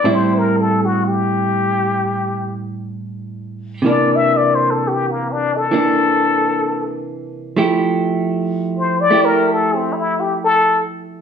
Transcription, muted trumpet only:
0.00 0.15 D5 medium
0.14 0.39 C5 medium
0.38 0.62 A#4 medium
0.60 0.86 A4 medium
0.85 1.09 F#4 medium
1.07 2.63 G4 medium
3.89 4.17 D5 medium
4.16 4.38 E5 medium
4.37 4.56 D5 medium
4.55 4.72 C5 medium
4.70 4.89 A4 medium
4.87 5.12 G4 medium
5.11 5.33 A#3 medium
5.32 5.58 D4 medium
5.56 6.96 A4 medium
8.79 9.02 C5 medium
9.01 9.26 D5 loud
9.25 9.54 A#4 medium
9.52 9.76 A4 medium
9.75 9.94 C4 medium
9.93 10.22 E4 medium
10.20 10.34 G4 medium
10.44 10.80 A4 medium

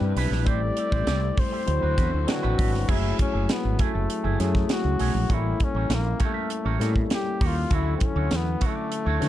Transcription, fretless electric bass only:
0.01 0.13 G2 medium
0.16 0.28 B1 medium
0.31 0.46 A#1 medium
0.46 0.70 A1 loud
0.93 1.04 A1 medium
1.07 1.30 C2 medium
1.68 1.79 D2 loud
1.83 1.95 D2 medium
1.98 2.10 E2 loud
2.14 2.25 D2 medium
2.44 2.55 A1 medium
2.59 2.75 G#1 medium
2.75 2.86 G1 loud
2.89 3.12 F#1 loud
3.35 3.46 F#1 medium
3.65 3.76 G#1 medium
3.95 4.06 F#1 medium
4.25 4.36 F#1 loud
4.40 4.63 F#2 loud
4.85 4.96 C#2 medium
5.00 5.12 B1 medium
5.15 5.26 A#1 medium
5.30 5.53 A1 loud
5.75 5.86 A1 medium
5.90 6.13 A#1 medium
6.65 6.77 A1 medium
6.80 7.03 A2 loud
7.41 7.64 D#2 medium
7.71 7.94 D2 loud
8.16 8.28 D2 loud
8.32 8.55 E2 loud
9.06 9.18 D2 loud
9.22 9.29 D3 loud

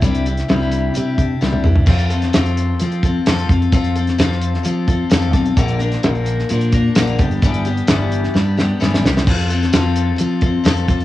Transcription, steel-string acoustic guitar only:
0.01 0.26 C3 medium
0.01 0.26 G3 medium
0.01 0.27 D4 medium
0.01 0.27 E4 medium
0.01 0.26 G4 medium
0.27 0.48 D4 medium
0.27 0.49 E4 medium
0.27 0.50 G4 medium
0.48 0.95 C3 medium
0.48 0.93 G3 loud
0.48 0.94 D4 medium
0.48 0.95 E4 medium
0.48 0.96 G4 medium
0.94 1.18 G3 medium
0.94 1.18 D4 medium
0.94 1.18 E4 medium
0.94 1.17 G4 medium
1.18 1.41 D4 soft
1.18 1.41 E4 medium
1.18 1.41 G4 medium
1.41 1.65 C3 medium
1.41 1.65 G3 medium
1.41 1.65 D4 medium
1.41 1.64 E4 medium
1.41 1.62 G4 loud
1.64 1.87 D4 soft
1.64 1.88 E4 medium
1.64 1.87 G4 medium
1.86 2.10 F3 medium
1.86 2.11 C4 medium
1.86 2.11 F4 medium
1.86 2.09 A4 loud
2.10 2.33 C4 soft
2.10 2.33 F4 medium
2.10 2.34 A4 medium
2.34 2.80 F3 medium
2.34 2.81 C4 medium
2.34 2.83 F4 loud
2.34 2.81 A4 medium
2.80 3.04 F3 medium
2.80 3.04 C4 medium
2.80 3.04 F4 medium
2.80 3.04 A4 medium
3.05 3.27 C4 medium
3.05 3.28 F4 medium
3.05 3.27 A4 medium
3.27 3.50 F3 medium
3.27 3.50 C4 loud
3.27 3.50 F4 loud
3.27 3.48 A4 loud
3.49 3.72 C4 medium
3.49 3.73 F4 medium
3.49 3.72 A4 medium
3.73 3.96 F3 medium
3.73 3.96 C4 medium
3.73 3.96 F4 medium
3.73 3.94 A4 medium
3.96 4.18 C4 medium
3.96 4.19 F4 medium
3.96 4.19 A4 medium
4.18 4.62 F3 medium
4.18 4.63 C4 medium
4.18 4.64 F4 medium
4.18 4.65 A4 medium
4.63 4.87 F3 medium
4.63 4.88 C4 medium
4.63 4.88 F4 medium
4.63 4.86 A4 medium
4.87 5.10 F4 medium
4.87 5.11 A4 medium
4.92 5.10 C4 medium
5.10 5.34 F3 medium
5.10 5.34 C4 medium
5.10 5.35 F4 loud
5.10 5.32 A4 loud
5.33 5.58 C4 medium
5.33 5.58 F4 medium
5.33 5.57 A4 medium
5.57 5.80 A#2 medium
5.57 5.80 D3 loud
5.57 5.81 F3 medium
5.57 5.81 A#3 medium
5.57 5.79 D4 medium
5.57 5.78 A#4 loud
5.79 6.03 F3 medium
5.79 6.04 A#3 medium
5.79 6.04 D4 medium
5.79 6.03 A#4 medium
6.04 6.50 A#2 medium
6.04 6.50 D3 medium
6.04 6.49 F3 loud
6.04 6.50 A#3 loud
6.04 6.52 D4 medium
6.04 6.51 A#4 loud
6.50 6.73 F3 medium
6.50 6.74 A#3 medium
6.50 6.73 D4 medium
6.50 6.72 A#4 medium
6.74 6.96 F3 medium
6.74 6.96 A#3 medium
6.74 6.97 D4 medium
6.74 6.96 A#4 medium
6.95 7.19 A#2 medium
6.95 7.19 D3 medium
6.95 7.20 F3 medium
6.95 7.20 A#3 medium
6.95 7.19 D4 medium
6.95 7.19 A#4 loud
7.19 7.43 G3 medium
7.19 7.43 B3 medium
7.19 7.43 D4 medium
7.19 7.42 G4 medium
7.43 7.66 G2 medium
7.43 7.66 E3 medium
7.43 7.66 G3 medium
7.43 7.67 B3 medium
7.43 7.66 D4 medium
7.43 7.65 G4 medium
7.66 7.87 G3 medium
7.66 7.88 B3 medium
7.66 7.88 D4 medium
7.66 7.89 G4 medium
7.88 8.34 G2 loud
7.88 8.35 E3 medium
7.88 8.33 G3 loud
7.88 8.34 B3 loud
7.88 8.35 D4 medium
7.88 8.36 G4 loud
8.34 8.57 G3 medium
8.34 8.58 B3 medium
8.34 8.57 D4 medium
8.34 8.56 G4 medium
8.57 8.80 G3 medium
8.57 8.80 B3 medium
8.57 8.80 D4 medium
8.57 8.81 G4 medium
8.80 9.03 G2 medium
8.80 9.04 E3 medium
8.80 9.04 G3 medium
8.80 9.04 B3 medium
8.80 9.04 D4 medium
8.80 9.03 G4 medium
9.04 9.27 G3 soft
9.04 9.28 B3 medium
9.04 9.28 D4 medium
9.04 9.27 G4 medium
9.28 9.50 F3 medium
9.28 9.51 C4 medium
9.28 9.50 F4 loud
9.28 9.48 A4 medium
9.50 9.74 F4 medium
9.50 9.73 A4 medium
9.54 9.73 C4 medium
9.73 10.16 F3 medium
9.73 10.17 C4 loud
9.73 10.19 F4 loud
9.73 10.19 A4 medium
10.16 10.41 F3 medium
10.16 10.42 C4 medium
10.16 10.42 F4 medium
10.16 10.41 A4 medium
10.42 10.65 F4 soft
10.42 10.65 A4 medium
10.46 10.63 C4 medium
10.63 10.87 F3 medium
10.63 10.88 C4 medium
10.63 10.88 F4 medium
10.63 10.86 A4 loud
10.87 11.05 C4 soft
10.87 11.05 F4 medium
10.87 11.05 A4 medium

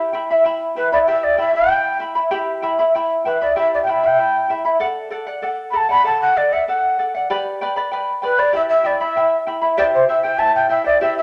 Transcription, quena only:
0.77 0.91 B4 medium
0.93 0.99 D5 medium
1.09 1.25 E5 medium
1.24 1.39 D5 medium
1.40 1.54 E5 medium
1.55 1.98 G5 medium
3.26 3.40 B4 medium
3.42 3.56 D5 medium
3.58 3.72 E5 medium
3.74 3.79 D5 medium
3.83 3.91 G5 medium
3.90 4.08 E5 medium
4.06 4.52 G5 medium
5.71 5.78 B5 medium
5.76 5.90 A5 medium
5.91 6.05 B5 medium
6.06 6.20 A5 medium
6.21 6.39 F#5 medium
6.37 6.54 D5 medium
6.53 6.67 E5 medium
6.68 7.11 F#5 medium
8.25 8.40 B4 medium
8.39 8.54 D5 medium
8.56 8.62 E5 medium
8.69 8.88 E5 medium
8.86 9.00 D5 medium
9.01 9.44 E5 medium
9.77 9.83 D5 medium
9.94 10.07 C5 medium
10.08 10.22 E5 medium
10.23 10.40 G5 medium
10.39 10.54 A5 medium
10.55 10.69 G5 medium
10.70 10.85 E5 medium
10.85 11.00 D5 medium
11.02 11.16 E5 medium
11.18 11.22 E5 medium

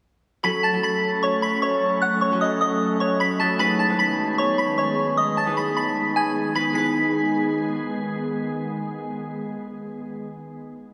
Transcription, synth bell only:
0.44 0.59 B5 loud
0.44 0.60 B6 medium
0.63 0.79 A5 medium
0.63 0.79 A6 medium
0.83 1.20 B5 medium
0.83 1.21 B6 medium
1.23 1.39 C#5 medium
1.23 1.38 C#6 medium
1.42 1.58 B5 medium
1.42 1.58 B6 medium
1.62 2.00 C#5 medium
1.62 1.99 C#6 medium
2.02 2.18 F#5 medium
2.02 2.17 F#6 medium
2.21 2.37 C#5 medium
2.21 2.37 C#6 medium
2.41 2.57 D#5 medium
2.41 2.57 D#6 medium
2.61 2.98 D#5 medium
2.61 2.98 D#6 medium
3.00 3.16 C#5 medium
3.00 3.16 C#6 medium
3.20 3.36 B5 medium
3.20 3.36 B6 medium
3.40 3.55 A5 medium
3.40 3.56 A6 medium
3.59 3.75 B5 loud
3.59 3.75 B6 medium
3.79 3.95 A5 medium
3.79 3.95 A6 medium
3.99 4.36 B5 medium
3.99 4.36 B6 medium
4.38 4.54 C#5 medium
4.38 4.54 C#6 medium
4.58 4.74 B5 medium
4.58 4.74 B6 medium
4.78 5.15 C#5 medium
4.78 5.15 C#6 medium
5.17 5.33 D#5 medium
5.17 5.33 D#6 medium
5.37 5.53 A5 medium
5.37 5.53 A6 medium
5.57 5.72 B5 medium
5.57 5.73 B6 medium
5.77 6.14 B5 medium
5.77 6.14 B6 medium
6.16 6.53 G#5 medium
6.16 6.54 G#6 medium
6.55 6.71 B5 loud
6.55 6.72 B6 medium
6.75 7.90 B6 medium

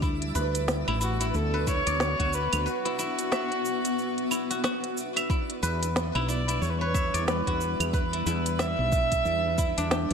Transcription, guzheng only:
0.00 2.03 D4 loud
0.00 0.87 E4 medium
0.00 1.72 G4 medium
0.35 1.53 B4 loud
0.88 1.00 E4 loud
1.01 1.20 E4 medium
1.21 1.67 E4 medium
1.54 2.65 B4 medium
1.67 2.85 E4 medium
1.87 3.71 D5 loud
2.19 4.50 F#4 medium
2.66 4.71 B4 medium
2.85 2.98 E4 medium
2.99 4.30 E4 medium
3.32 5.04 E5 medium
4.31 5.29 E4 medium
4.50 4.63 F#4 medium
4.64 7.07 F#4 loud
5.16 6.89 E5 loud
5.30 6.15 E4 medium
5.63 6.81 B4 loud
6.15 6.28 E4 loud
6.28 6.48 E4 medium
6.48 8.13 E4 medium
6.81 7.93 B4 medium
6.94 8.59 E5 medium
7.14 8.99 D5 loud
7.47 9.91 F#4 medium
7.94 9.98 B4 medium
8.13 8.26 E4 medium
8.27 9.58 E4 loud
8.59 10.13 E5 medium
9.58 10.13 E4 medium
9.78 10.13 D4 loud
9.91 10.13 G4 medium

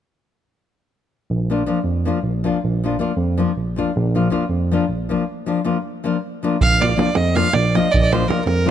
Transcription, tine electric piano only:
1.30 1.62 A#1 medium
1.84 2.08 F2 medium
2.23 2.47 A#1 medium
2.63 2.95 A#1 medium
3.16 3.40 F2 medium
3.56 3.80 A#1 medium
3.96 4.28 A#1 medium
4.50 4.74 F2 medium
4.89 5.13 A#1 medium
6.61 6.93 A#1 medium
7.15 7.39 F2 medium
7.54 7.78 A#1 medium
7.94 8.25 A#1 medium
8.46 8.69 F2 medium

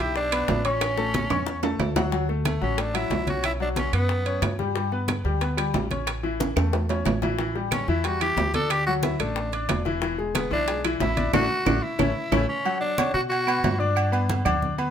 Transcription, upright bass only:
0.00 0.45 B1 medium
0.48 1.25 A1 medium
1.30 1.76 E2 medium
1.80 2.56 D2 loud
2.61 3.07 A1 medium
3.10 3.87 B1 medium
3.93 4.39 F#2 medium
4.42 5.19 G2 medium
5.24 5.71 D2 medium
5.74 6.51 A1 medium
6.56 7.02 E2 medium
7.05 7.82 A1 medium
7.88 8.34 E2 medium
8.37 9.14 D2 medium
9.20 9.66 A1 medium
9.69 10.46 E1 medium
10.51 10.97 B1 medium
11.00 11.31 A1 medium
11.33 11.45 A1 medium
11.66 11.78 A1 loud
11.99 12.11 A1 medium
12.32 12.44 A1 loud
13.14 13.60 B2 medium
13.63 14.40 G2 loud
14.45 14.90 D2 medium

